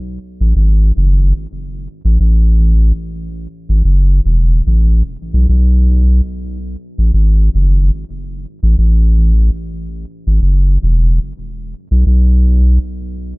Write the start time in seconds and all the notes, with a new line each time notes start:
0.41 A1
0.56 G#1
0.97 F#1
2.05 A1
2.20 A1
3.69 G#1
3.85 F#1
4.26 E1
4.67 A1
5.34 B1
5.49 B1
6.98 A1
7.14 G#1
7.55 F#1
8.63 A1
8.78 A1
10.27 G#1
10.42 F#1
10.83 E1
11.91 B1
12.06 B1